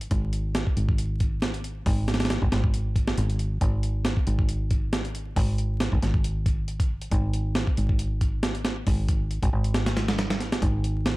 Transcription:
0.01 closed hi-hat
0.11 fingered electric bass G#1, kick, closed hi-hat
0.33 closed hi-hat
0.55 snare, closed hi-hat
0.67 kick
0.77 fingered electric bass G#1, closed hi-hat
0.89 kick
0.98 closed hi-hat
1.20 kick, closed hi-hat
1.42 snare, closed hi-hat
1.54 closed hi-hat
1.64 closed hi-hat
1.86 fingered electric bass G#1, kick, open hi-hat
2.08 snare, closed hi-hat
2.14 snare, closed hi-hat
2.20 snare, closed hi-hat
2.25 snare, closed hi-hat
2.30 snare, closed hi-hat
2.42 fingered electric bass G#1, kick
2.52 fingered electric bass G#1, snare, closed hi-hat
2.64 kick
2.74 closed hi-hat
2.96 kick, closed hi-hat
3.07 snare
3.18 fingered electric bass G#1, closed hi-hat
3.30 closed hi-hat
3.39 closed hi-hat
3.61 fingered electric bass G#1, kick, closed hi-hat
3.83 closed hi-hat
4.05 snare, closed hi-hat
4.17 kick
4.27 fingered electric bass G#1, closed hi-hat
4.39 kick
4.49 closed hi-hat
4.71 kick, closed hi-hat
4.93 snare, closed hi-hat
5.05 closed hi-hat
5.15 closed hi-hat
5.36 fingered electric bass G#1, kick, open hi-hat
5.58 closed hi-hat
5.80 snare, closed hi-hat
5.92 fingered electric bass G#1, kick
6.02 fingered electric bass G#1, snare, closed hi-hat
6.14 kick
6.24 closed hi-hat
6.46 kick, closed hi-hat
6.68 closed hi-hat
6.80 kick, closed hi-hat
7.02 closed hi-hat
7.11 fingered electric bass G#1, kick, closed hi-hat
7.33 closed hi-hat
7.55 snare, closed hi-hat
7.67 kick
7.77 fingered electric bass G#1, closed hi-hat
7.89 kick
7.99 closed hi-hat
8.21 kick, closed hi-hat
8.43 snare, closed hi-hat
8.55 closed hi-hat
8.65 snare, closed hi-hat
8.87 fingered electric bass G#1, kick, open hi-hat
9.08 kick, closed hi-hat
9.31 closed hi-hat
9.43 fingered electric bass G#1, kick, closed hi-hat
9.53 fingered electric bass G#1
9.64 closed hi-hat
9.74 snare, closed hi-hat
9.86 snare, closed hi-hat
9.97 snare, closed hi-hat
10.08 snare, closed hi-hat
10.19 snare, closed hi-hat
10.30 snare, closed hi-hat
10.40 snare, closed hi-hat
10.52 snare, closed hi-hat
10.62 fingered electric bass G#1, kick, closed hi-hat
10.84 closed hi-hat
11.06 snare, closed hi-hat

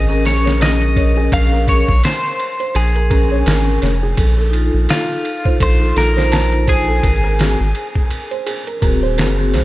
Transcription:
Already playing: sub bass G#1, felt piano G#4 A#4 C5, clean electric guitar D#5
0.08 vibraphone C#4 G#4 A#4, felt piano A#4
0.25 sub bass A#1, felt piano A#4, clean electric guitar C#5, snare, ride
0.43 vibraphone C#4 G#4, felt piano C#5
0.47 vibraphone A#4, snare
0.60 felt piano A#4, clean electric guitar D#5, snare, ride
0.82 ride
0.96 felt piano C#5, kick, ride
1.17 felt piano G#4
1.32 sub bass A#1, felt piano A#4, clean electric guitar F5, kick, ride
1.53 felt piano A#4
1.67 vibraphone C#4 G#4 A#4, clean electric guitar C#5, kick, ride
1.88 sub bass A#1, kick
2.04 clean electric guitar C5, snare, ride
2.39 ride
2.60 felt piano C5, ride
2.75 sub bass A#1, felt piano G#4, clean electric guitar G#4, ride
2.96 felt piano A#4, ride
3.09 vibraphone C#4 G#4 A#4, felt piano A#4, kick, ride
3.31 felt piano C#5
3.46 sub bass G#1, felt piano A#4, snare, ride
3.65 vibraphone C#4 G#4 A#4
3.82 sub bass F1, felt piano C#5, snare, ride
4.03 felt piano G#4
4.17 sub bass A#1, felt piano A4, kick, ride
4.38 felt piano A4
4.50 vibraphone D#4 F4, ride
4.56 vibraphone A4
4.74 sub bass A#1
4.89 clean electric guitar F4, snare, ride
5.25 ride
5.45 felt piano C5, kick
5.60 sub bass A#1, felt piano A4, clean electric guitar C5, kick, ride
5.80 vibraphone D#4 F4 A4, felt piano A4
5.96 sub bass A#1, felt piano A4, clean electric guitar A#4, snare, ride
6.14 vibraphone D#4 F4, felt piano C5
6.18 vibraphone C5, snare
6.32 felt piano A5, snare, ride
6.52 ride
6.68 clean electric guitar G#4, felt piano C5, kick, ride
6.88 felt piano A4
7.03 sub bass G#1, felt piano A#4, kick, ride
7.24 felt piano A#4
7.38 vibraphone C4 F#4 G#4, snare, ride
7.60 sub bass G#1
7.75 ride
7.95 kick
8.11 ride
8.31 felt piano C5, ride
8.46 felt piano G#4, ride
8.67 felt piano A#4, ride
8.80 sub bass D#1, vibraphone C4 F#4 G#4, felt piano A#4, kick, ride
9.03 felt piano C5
9.18 sub bass F#1, felt piano A#4, snare, ride
9.37 vibraphone C4 F#4 G#4
9.54 sub bass C2, felt piano C5, snare, ride

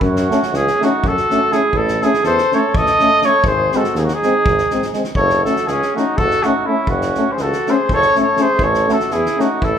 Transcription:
0.00 tuba F#2, trumpet C#4, cornet F#4, kick
0.16 snare
0.30 euphonium A3, french horn C#4, snare
0.43 snare
0.53 tuba C#2, trumpet C#4, cornet G#4, snare
0.67 snare
0.80 euphonium A3, french horn C#4, trumpet D#4, cornet F#4, snare
1.04 tuba F#2, trumpet F#4, cornet A4, kick
1.17 snare
1.30 euphonium A3, french horn C#4, snare
1.52 euphonium A3, french horn C#4, trumpet E4, cornet G#4, snare
1.71 tuba A1, trumpet E4, kick
1.76 cornet A4
1.88 snare
2.01 euphonium A3, french horn C#4, trumpet E4, cornet G#4, snare
2.14 snare
2.23 tuba E2, trumpet A4, cornet C5, snare
2.38 snare
2.52 euphonium A3, french horn C#4, trumpet A4, cornet C#5, snare
2.74 tuba A1, trumpet A4, cornet D#5, kick
2.86 snare
2.99 euphonium A3, french horn C#4, snare
3.22 euphonium A3, french horn C#4, cornet C#5, snare
3.26 trumpet A4
3.43 tuba G#1, trumpet G#4, cornet C5, kick
3.72 euphonium G#3, french horn C4, trumpet F#4, snare
3.76 cornet A4
3.84 snare
3.94 tuba D#2, cornet G#4, snare
3.98 trumpet D#4
4.04 trumpet D#4, cornet F#4, snare
4.14 trumpet D#4, cornet G#4
4.22 euphonium G#3, french horn C4, snare
4.46 tuba G#1, kick
4.58 snare
4.70 euphonium G#3, french horn C4, snare
4.82 snare
4.93 euphonium G#3, french horn C4, snare
5.04 snare
5.15 tuba F#1, trumpet A4, cornet C#5, kick
5.30 snare
5.44 euphonium A3, french horn C#4, trumpet F#4, cornet A4, snare
5.56 snare
5.66 tuba C#2, trumpet C#4, cornet G#4, snare
5.82 snare
5.95 euphonium A3, french horn C#4, trumpet D#4, cornet F#4, snare
6.17 tuba F#1, trumpet F#4, cornet A4, kick
6.31 snare
6.43 euphonium A3, french horn C#4, trumpet D#4, cornet F#4, snare
6.66 euphonium A3, french horn C#4, trumpet C#4, cornet E4
6.87 tuba F#1, trumpet C#4, cornet F#4, kick
7.01 snare
7.15 euphonium A3, french horn C#4, snare
7.32 trumpet G#4, cornet C5
7.37 tuba C#2, cornet A4, snare
7.43 trumpet F#4
7.52 snare
7.66 euphonium A3, french horn C#4, cornet C5, snare
7.72 trumpet G#4
7.89 tuba F#1, trumpet A4, kick
7.94 cornet C#5
8.02 snare
8.15 euphonium A3, french horn C#4, snare
8.20 trumpet A4, cornet C#5
8.37 euphonium A3, french horn C#4, snare
8.41 trumpet G#4, cornet C5
8.59 tuba A1, kick
8.63 trumpet A4, cornet C#5
8.74 snare
8.88 euphonium A3, french horn C#4, trumpet F#4, snare
8.92 cornet A4
9.00 snare
9.10 tuba E2, trumpet E4, cornet G#4, snare
9.26 snare
9.37 euphonium A3, french horn C#4, trumpet D#4, cornet F#4, snare
9.62 tuba A1, trumpet E4, cornet A4, kick

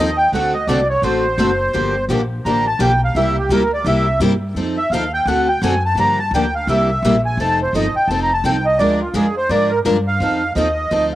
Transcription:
Already playing: upright bass D#2, accordion D#5
0.00 steel-string acoustic guitar F3 D#4 A4
0.17 accordion G5
0.32 upright bass D2, steel-string acoustic guitar D3 A3 C4 F#4 A4, accordion F#5
0.54 accordion D#5
0.67 upright bass C2, steel-string acoustic guitar D3 A3 C4 F#4 A4, accordion D5
0.90 accordion C#5
1.02 upright bass A1, steel-string acoustic guitar D3 A3 C4 F#4 A4, accordion C5
1.38 upright bass F#1, steel-string acoustic guitar D3 A3 C4 F#4 A4
1.73 upright bass G1, steel-string acoustic guitar D3 F3 A#3 D4 G4
2.09 upright bass A#1, steel-string acoustic guitar D3 F3 A#3 D4 G4
2.45 upright bass A1, steel-string acoustic guitar D3 F3 A#3 D4 G4, accordion A#5
2.67 accordion A5
2.79 upright bass B1, steel-string acoustic guitar D3 F3 A#3 D4 G4, accordion G5
3.05 accordion F5
3.15 upright bass C2, steel-string acoustic guitar C3 G3 A#3 E4 G4, accordion E5
3.39 accordion G4
3.49 upright bass D2, steel-string acoustic guitar C3 G3 A#3 E4 G4, accordion A#4
3.73 accordion D5
3.84 upright bass C2, steel-string acoustic guitar C3 G3 A#3 E4 G4, accordion E5
4.20 upright bass G2, steel-string acoustic guitar C3 G3 A#3 E4 G4
4.55 upright bass F2, steel-string acoustic guitar F3 C4 D#4 A4
4.78 accordion E5
4.90 upright bass D#2, steel-string acoustic guitar F3 C4 D#4, accordion F5
4.94 steel-string acoustic guitar A4
5.14 accordion G5
5.25 upright bass D2, steel-string acoustic guitar D3 A3 C4 F#4 A4, accordion F#5
5.48 accordion G5
5.62 upright bass F#2, steel-string acoustic guitar D3 A3 C4 F#4 A4, accordion G#5
5.86 accordion A5
5.95 upright bass G2, steel-string acoustic guitar D3 F3 A#3 D4 G4
6.00 accordion A#5
6.19 accordion A5
6.31 upright bass D2, steel-string acoustic guitar D3 F3 D4
6.35 steel-string acoustic guitar A#3 G4, accordion G5
6.55 accordion F5
6.67 upright bass C2, steel-string acoustic guitar C3 G3 A#3 E4 G4, accordion E5
7.02 upright bass A#1, steel-string acoustic guitar C3 G3 A#3 E4 G4
7.26 accordion G#5
7.37 upright bass F1, steel-string acoustic guitar F3 C4 D#4 A4, accordion A5
7.62 accordion C5
7.73 upright bass G1, steel-string acoustic guitar F3 C4 D#4 A4, accordion D#5
7.94 accordion G5, muted upright bass stroke
8.08 upright bass F1, steel-string acoustic guitar F3 C4 D#4 A4, accordion A5
8.23 accordion A#5
8.33 accordion A5
8.44 upright bass C2, steel-string acoustic guitar F3 C4 D#4 A4, accordion G5
8.65 accordion D#5
8.79 upright bass D2, steel-string acoustic guitar F3 G#3 D4 F4 A#4, accordion D5
9.01 accordion F4
9.14 upright bass F2, steel-string acoustic guitar F3 G#3 D4 F4 A#4, accordion G#4
9.37 accordion C5
9.49 upright bass G#2, steel-string acoustic guitar F3 G#3 D4 F4 A#4, accordion D5
9.71 accordion A#4
9.85 upright bass G2, steel-string acoustic guitar F3 G#3 D4 F4 A#4
10.08 accordion F5
10.20 upright bass F2, steel-string acoustic guitar F3 C4 D#4 A4
10.56 upright bass D#2, steel-string acoustic guitar F3 C4 D#4 A4, accordion D#5
10.91 upright bass D2, steel-string acoustic guitar F3 C4 D#4 A4

